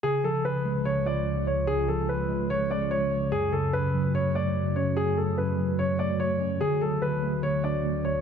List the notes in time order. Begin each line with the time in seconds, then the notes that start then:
0.03 C#2 C#3 G#3 F4 G#4
0.24 F3 A4
0.44 C#3 B4
0.65 G#3
0.85 C#3 C#5
1.06 F4 D5
1.47 C#5
1.67 C#3 G#4
1.88 F3 A4
2.09 C#3 B4
2.29 G#3
2.50 C#3 C#5
2.70 C#4 D5
2.91 C#5
3.12 C#5
3.32 F#2 A3 F#4 G#4
3.53 C#3 A4
3.73 F#2 B4
3.94 F#3
4.14 F#2 C#5
4.35 A3 D5
4.76 C#4 C#5
4.97 G#4
5.17 C#3 A4
5.38 F#2 B4
5.58 F#3
5.79 F#2 C#5
5.99 A3 D5
6.20 C#5
6.41 C#4
6.61 D2 D3 G#4
6.81 F#3 A4
7.02 D3 B4
7.23 A3
7.43 D3 C#5
7.64 D4 D5
8.05 C#5 D5